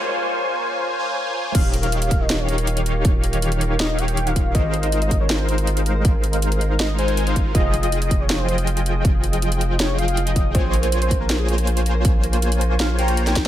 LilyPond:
<<
  \new Staff \with { instrumentName = "Soft synth lead" } { \time 4/4 \key ees \mixolydian \tempo 4 = 160 r1 | f''8. f''8 f''8 ees''8 des''8 r4 r16 | r2 ees''8 g''8. f''8. | ees''8. ees''8 ees''8 des''8 c''8 r4 r16 |
r2 ees''8 c''8. c''8. | ees''8. ees''8 ees''8 des''8 c''8 r4 r16 | r2 des''8 f''8. ees''8. | c''8. c''8 c''8 bes'8 aes'8 r4 r16 |
r2 f''8 g''8. g''8. | }
  \new Staff \with { instrumentName = "Supersaw synth" } { \time 4/4 \key ees \mixolydian <bes f' c'' des'' aes''>2~ <bes f' c'' des'' aes''>8 <bes f' c'' des'' aes''>4. | <ees ees' g' des'' f''>2~ <ees ees' g' des'' f''>8 <ees ees' g' des'' f''>4. | <ees ees' g' des'' f''>2~ <ees ees' g' des'' f''>8 <ees ees' g' des'' f''>4. | <aes ees' bes' c'' f''>2~ <aes ees' bes' c'' f''>8 <aes ees' bes' c'' f''>4. |
<aes ees' bes' c'' f''>2~ <aes ees' bes' c'' f''>8 <aes ees' bes' c'' aes''>8. <aes ees' bes' c'' f''>8. | <f f' aes' ees'' g''>2~ <f f' aes' ees'' g''>8 <f f' aes' ees'' g''>4. | <f f' aes' ees'' g''>2~ <f f' aes' ees'' g''>8 <f f' aes' ees'' g''>4. | <bes f' c'' des'' aes''>2~ <bes f' c'' des'' aes''>8 <bes f' c'' des'' aes''>4. |
<bes f' c'' des'' aes''>2~ <bes f' c'' des'' aes''>8 <bes f' c'' des'' bes''>8. <bes f' c'' des'' aes''>8. | }
  \new Staff \with { instrumentName = "Harp" } { \time 4/4 \key ees \mixolydian r1 | f'16 g'16 bes'16 des''16 f'16 g'16 bes'16 des''16 f'16 g'16 bes'16 des''16 f'16 g'16 bes'16 des''16 | f'16 g'16 bes'16 des''16 f'16 g'16 bes'16 des''16 f'16 g'16 bes'16 des''16 f'16 g'16 bes'16 des''16 | f'16 aes'16 bes'16 c''16 f'16 aes'16 bes'16 c''16 f'16 aes'16 bes'16 c''16 f'16 aes'16 bes'16 c''16 |
f'16 aes'16 bes'16 c''16 f'16 aes'16 bes'16 c''16 f'16 aes'16 f'16 f'16 ees''16 ees''16 f''16 f'16 | f'16 aes'16 c''16 ees''16 f'16 aes'16 c''16 ees''16 f'16 aes'16 c''16 ees''16 f'16 aes'16 c''16 ees''16 | f'16 aes'16 c''16 ees''16 f'16 aes'16 c''16 ees''16 f'16 aes'16 c''16 ees''16 f'16 aes'16 c''16 ees''16 | f'16 aes'16 bes'16 c''16 f'16 aes'16 bes'16 c''16 f'16 aes'16 bes'16 c''16 f'16 aes'16 bes'16 c''16 |
f'16 aes'16 bes'16 c''16 f'16 aes'16 bes'16 c''16 f'16 aes'16 f'16 des''16 bes'16 aes''16 r8 | }
  \new Staff \with { instrumentName = "Sub bass" } { \clef bass \time 4/4 \key ees \mixolydian r1 | ees,,1~ | ees,,1 | aes,,1~ |
aes,,1 | f,,1~ | f,,1 | bes,,1~ |
bes,,1 | }
  \new DrumStaff \with { instrumentName = "Drums" } \drummode { \time 4/4 r4 r4 r4 r4 | <cymc hh bd>8 hh16 hh16 hh16 hh16 <hh bd>8 <hh sn>8 hh16 hh16 hh16 hh16 hh8 | <hh bd>8 hh16 hh16 hh16 hh16 hh8 <hh sn>8 hh16 hh16 hh16 hh16 <hh bd>8 | <hh bd>8 hh16 hh16 hh16 hh16 <hh bd>8 <hh sn>8 hh16 hh16 hh16 hh16 hh8 |
<hh bd>8 hh16 hh16 hh16 hh16 hh8 <hh sn>8 hh16 hh16 hh16 hh16 <hh bd>8 | <hh bd>8 hh16 hh16 hh16 hh16 <hh bd>8 <hh sn>8 hh16 hh16 hh16 hh16 hh8 | <hh bd>8 hh16 hh16 hh16 hh16 hh8 <hh sn>8 hh16 hh16 hh16 hh16 <hh bd>8 | <hh bd>8 hh16 hh16 hh16 hh16 <hh bd>8 <hh sn>8 hh16 hh16 hh16 hh16 hh8 |
<hh bd>8 hh16 hh16 hh16 hh16 hh8 <hh sn>8 hh16 hh16 hh16 <hh sn>16 <hh bd sn>8 | }
>>